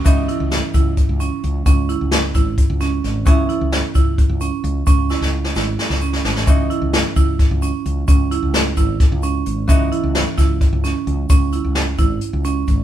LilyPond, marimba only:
\new Staff \with { instrumentName = "Marimba" } { \time 7/8 \key cis \minor \tempo 4 = 131 cis'8 e'4 e'4 cis'4 | cis'8 e'4 e'4 cis'4 | cis'8 e'4 e'4 cis'4 | cis'8 e'4 e'4 cis'4 |
cis'8 e'4 e'4 cis'4 | cis'8 e'4 e'4 cis'4 | cis'8 e'4 e'4 cis'4 | cis'8 e'4 e'4 cis'4 | }